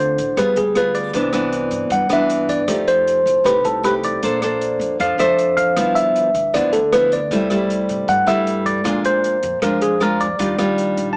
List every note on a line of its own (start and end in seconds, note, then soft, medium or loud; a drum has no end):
0.00 0.15 D2 medium
0.00 0.36 D3 medium
0.00 0.16 C4 medium
0.00 0.16 F4 medium
0.00 0.16 A4 medium
0.00 0.40 C5 medium
0.18 0.36 A1 medium
0.18 kick soft
0.18 closed hi-hat soft
0.37 0.55 G1 medium
0.37 1.12 G3 soft
0.37 0.62 B3 soft
0.37 0.63 F4 soft
0.37 0.63 G#4 soft
0.37 0.58 B4 medium
0.37 kick soft
0.37 cross-stick soft
0.37 closed hi-hat soft
0.56 1.11 D2 medium
0.56 0.77 G#4 medium
0.56 closed hi-hat soft
0.75 1.13 B3 soft
0.75 1.13 F4 soft
0.75 1.13 G#4 medium
0.75 0.97 B4 medium
0.75 cross-stick medium
0.75 closed hi-hat soft
0.95 1.94 D5 medium
0.95 closed hi-hat soft
1.13 1.68 C2 medium
1.13 1.90 C3 medium
1.13 1.31 E3 soft
1.13 1.31 B3 soft
1.13 1.31 D4 medium
1.13 kick medium
1.13 closed hi-hat medium
1.33 2.08 E3 medium
1.33 2.08 B3 medium
1.33 2.08 D4 medium
1.33 cross-stick medium
1.33 closed hi-hat soft
1.53 closed hi-hat soft
1.71 1.90 G2 medium
1.71 closed hi-hat soft
1.90 2.09 G2 medium
1.90 2.66 G2 soft
1.90 2.10 F#5 medium
1.90 kick medium
1.90 closed hi-hat soft
2.09 2.65 G2 medium
2.09 2.65 E3 medium
2.09 2.65 B3 medium
2.09 2.65 D4 medium
2.09 2.52 E5 medium
2.09 cross-stick medium
2.09 closed hi-hat soft
2.30 closed hi-hat soft
2.49 2.89 D5 medium
2.49 kick medium
2.49 closed hi-hat soft
2.67 3.22 F2 medium
2.67 3.43 F3 soft
2.67 3.20 A3 medium
2.67 3.20 D#4 soft
2.67 3.21 G4 soft
2.67 kick medium
2.67 cross-stick medium
2.67 closed hi-hat medium
2.88 3.47 C5 medium
2.88 closed hi-hat soft
3.07 closed hi-hat soft
3.26 3.44 C2 medium
3.26 closed hi-hat soft
3.44 3.64 C2 medium
3.44 4.20 C3 soft
3.44 3.81 A3 soft
3.44 3.80 D#4 soft
3.44 3.81 G4 medium
3.44 3.66 B4 medium
3.44 kick medium
3.44 cross-stick medium
3.44 closed hi-hat medium
3.64 4.18 C2 medium
3.64 3.83 A4 medium
3.64 closed hi-hat soft
3.83 4.21 A3 medium
3.83 4.21 D#4 soft
3.83 4.21 G4 medium
3.83 3.93 B4 medium
3.83 cross-stick medium
3.83 closed hi-hat soft
4.03 5.03 D5 medium
4.03 kick medium
4.03 closed hi-hat soft
4.23 4.77 A#1 medium
4.23 4.98 A#3 medium
4.23 4.39 D4 medium
4.23 4.39 A4 medium
4.23 4.40 C5 medium
4.23 kick medium
4.23 closed hi-hat medium
4.42 4.97 D4 medium
4.42 4.97 A4 medium
4.42 4.97 C5 medium
4.42 cross-stick medium
4.42 closed hi-hat soft
4.61 closed hi-hat soft
4.79 4.98 F2 medium
4.79 closed hi-hat soft
4.99 5.17 F2 medium
4.99 5.75 F3 soft
4.99 5.16 D4 soft
4.99 5.16 A4 soft
4.99 5.16 C5 soft
4.99 5.20 F5 medium
4.99 kick medium
4.99 closed hi-hat soft
5.18 5.72 F2 medium
5.18 5.74 D4 medium
5.18 5.74 A4 medium
5.18 5.74 C5 medium
5.18 5.59 E5 medium
5.18 cross-stick medium
5.18 closed hi-hat soft
5.38 closed hi-hat soft
5.57 5.97 F5 medium
5.57 kick medium
5.57 closed hi-hat soft
5.77 6.31 G1 medium
5.77 6.52 G2 soft
5.77 6.29 F3 medium
5.77 6.29 B3 medium
5.77 6.29 E4 soft
5.77 kick medium
5.77 cross-stick medium
5.77 closed hi-hat medium
5.95 6.55 E5 medium
5.95 closed hi-hat soft
6.16 closed hi-hat soft
6.35 6.53 D2 medium
6.35 kick medium
6.35 closed hi-hat soft
6.54 6.72 D2 medium
6.54 7.29 D3 soft
6.54 6.79 F3 soft
6.54 6.79 B3 soft
6.54 6.79 E4 soft
6.54 6.72 D5 medium
6.54 kick medium
6.54 cross-stick medium
6.54 closed hi-hat medium
6.73 7.27 D2 medium
6.73 6.93 A4 medium
6.73 closed hi-hat soft
6.93 7.19 F3 medium
6.93 7.19 B3 soft
6.93 7.19 E4 medium
6.93 7.12 B4 medium
6.93 cross-stick medium
6.93 closed hi-hat soft
7.12 8.12 D5 medium
7.12 closed hi-hat soft
7.31 7.85 C2 medium
7.31 8.06 C3 medium
7.31 7.48 G3 soft
7.31 7.48 A3 medium
7.31 7.48 E4 medium
7.31 kick medium
7.31 closed hi-hat medium
7.50 8.24 G3 medium
7.50 8.25 A3 medium
7.50 8.25 E4 medium
7.50 cross-stick soft
7.50 closed hi-hat soft
7.70 closed hi-hat soft
7.89 8.07 G2 medium
7.89 closed hi-hat soft
8.08 8.83 G2 soft
8.08 8.26 G2 medium
8.08 8.28 F#5 medium
8.08 kick soft
8.08 closed hi-hat soft
8.26 8.81 G2 medium
8.26 8.82 G3 medium
8.26 8.82 A3 medium
8.26 8.82 E4 medium
8.26 8.67 E5 medium
8.26 cross-stick medium
8.26 closed hi-hat soft
8.47 closed hi-hat soft
8.66 9.02 D5 medium
8.66 kick medium
8.66 closed hi-hat soft
8.84 9.39 A#1 medium
8.84 9.60 A#2 medium
8.84 9.36 G#3 soft
8.84 9.37 D4 medium
8.84 9.37 F4 medium
8.84 kick medium
8.84 cross-stick medium
8.84 closed hi-hat medium
9.05 9.59 C5 medium
9.05 closed hi-hat soft
9.24 closed hi-hat soft
9.43 9.61 F2 medium
9.43 closed hi-hat soft
9.62 9.80 F2 medium
9.62 10.37 F3 soft
9.62 9.98 G#3 soft
9.62 9.98 D4 soft
9.62 9.98 F4 soft
9.62 9.80 A#4 medium
9.62 kick soft
9.62 cross-stick medium
9.62 closed hi-hat medium
9.81 10.35 F2 medium
9.81 10.01 G#4 medium
9.81 closed hi-hat soft
10.00 10.26 G#3 medium
10.00 10.27 D4 soft
10.00 10.27 F4 medium
10.00 10.21 A#4 medium
10.00 cross-stick medium
10.00 closed hi-hat soft
10.20 11.08 D5 medium
10.20 kick medium
10.20 closed hi-hat soft
10.39 10.93 D#2 medium
10.39 11.14 D#3 medium
10.39 10.55 G3 medium
10.39 10.55 D4 soft
10.39 10.56 F4 medium
10.39 kick medium
10.39 closed hi-hat medium
10.58 11.17 G3 medium
10.58 11.17 D4 medium
10.58 11.17 F4 medium
10.58 cross-stick medium
10.58 closed hi-hat soft
10.78 closed hi-hat soft
10.97 11.15 A#1 medium
10.97 closed hi-hat soft
11.13 11.17 A5 medium